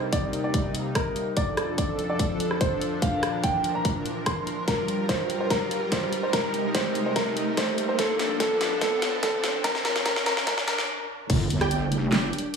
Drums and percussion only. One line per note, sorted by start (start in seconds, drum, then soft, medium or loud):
0.13 kick medium
0.13 closed hi-hat medium
0.33 closed hi-hat medium
0.54 kick loud
0.54 closed hi-hat medium
0.75 closed hi-hat medium
0.95 kick loud
0.95 cross-stick medium
0.95 closed hi-hat medium
1.16 closed hi-hat medium
1.37 kick loud
1.37 closed hi-hat medium
1.57 cross-stick medium
1.57 closed hi-hat medium
1.78 kick medium
1.78 closed hi-hat medium
1.99 closed hi-hat soft
2.19 kick loud
2.19 closed hi-hat medium
2.40 closed hi-hat medium
2.51 cross-stick medium
2.61 kick loud
2.61 closed hi-hat medium
2.81 closed hi-hat medium
3.02 kick loud
3.02 closed hi-hat medium
3.23 cross-stick medium
3.23 closed hi-hat medium
3.44 kick medium
3.44 closed hi-hat medium
3.64 closed hi-hat soft
3.85 kick loud
3.85 closed hi-hat medium
4.06 closed hi-hat medium
4.26 kick loud
4.26 cross-stick medium
4.26 closed hi-hat medium
4.47 closed hi-hat medium
4.68 kick loud
4.68 snare soft
4.68 closed hi-hat medium
4.88 closed hi-hat soft
5.09 kick medium
5.09 snare medium
5.09 closed hi-hat medium
5.30 closed hi-hat soft
5.50 kick loud
5.50 snare medium
5.50 closed hi-hat medium
5.71 closed hi-hat medium
5.92 kick loud
5.92 snare medium
5.92 closed hi-hat medium
6.13 closed hi-hat medium
6.33 kick loud
6.33 snare medium
6.33 closed hi-hat medium
6.54 closed hi-hat medium
6.75 kick medium
6.75 snare medium
6.75 closed hi-hat medium
6.95 closed hi-hat medium
7.16 kick loud
7.16 snare medium
7.16 closed hi-hat medium
7.37 closed hi-hat medium
7.57 kick loud
7.57 snare medium
7.57 closed hi-hat medium
7.78 closed hi-hat medium
7.99 kick loud
7.99 snare medium
7.99 closed hi-hat medium
8.19 snare medium
8.19 closed hi-hat medium
8.40 kick loud
8.40 snare medium
8.40 closed hi-hat medium
8.61 snare medium
8.61 closed hi-hat medium
8.81 kick loud
8.81 snare medium
8.81 closed hi-hat medium
9.02 snare medium
9.02 closed hi-hat medium
9.23 kick loud
9.23 snare medium
9.23 closed hi-hat medium
9.44 snare medium
9.44 closed hi-hat medium
9.64 kick loud
9.64 snare medium
9.64 closed hi-hat medium
9.75 snare medium
9.85 snare loud
9.85 closed hi-hat medium
9.96 snare medium
9.96 closed hi-hat soft
10.06 kick medium
10.06 snare loud
10.06 closed hi-hat medium
10.16 snare medium
10.26 snare loud
10.26 closed hi-hat medium
10.37 snare medium
10.47 kick loud
10.47 snare loud
10.47 closed hi-hat medium
10.58 snare medium
10.68 snare loud
10.68 closed hi-hat medium
10.78 snare medium
11.30 kick loud
11.30 closed hi-hat medium
11.30 crash loud
11.50 closed hi-hat medium
11.61 cross-stick medium
11.61 closed hi-hat soft
11.71 closed hi-hat medium
11.92 closed hi-hat medium
12.12 snare loud
12.12 clap medium
12.12 closed hi-hat medium
12.33 closed hi-hat medium
12.38 closed hi-hat medium